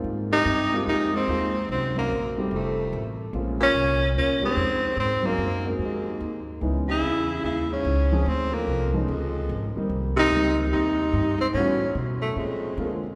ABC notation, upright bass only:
X:1
M:4/4
L:1/8
Q:"Swing" 1/4=146
K:Ab
V:1 name="Upright bass" clef=bass
A,,2 G,,2 F,,2 E,,2 | C,,2 B,,,2 F,,,2 =A,,,2 | B,,,2 C,,2 E,, z F,,2 | A,,2 _G,,2 F,,2 E,,2 |
D,,2 _F,,2 E,,2 D,,2 | =D,,2 C,,2 _D,,2 A,,, z | C,,2 D,,2 E,,2 G,,2 | =A,,2 =B,,2 _B,,2 =D,2 |]